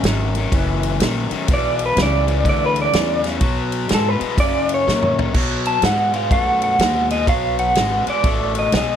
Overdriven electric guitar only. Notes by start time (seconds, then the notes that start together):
0.05 F#2 D#3
0.36 F#2 D#3
0.53 F#2 E3
1.02 F#2 D#3
1.32 F#2 D#3
1.49 E2 B2
1.97 E2 C#3
2.27 E2 C#3
2.44 E2 D3
2.93 E2 C#3
3.23 E2 C#3
3.41 B2 F#3
3.89 B2 G#3
4.20 B2 G#3
4.38 F#2 C#3
4.87 F#2 D#3
5.18 F#2 D#3
5.34 B2 F#3
5.83 B2 G#3
6.14 B2 G#3
6.31 B2 A3
6.80 B2 G#3
7.11 B2 G#3
7.27 B2 F#3
7.76 B2 G#3
8.07 B2 G#3
8.24 B2 A3
8.74 B2 G#3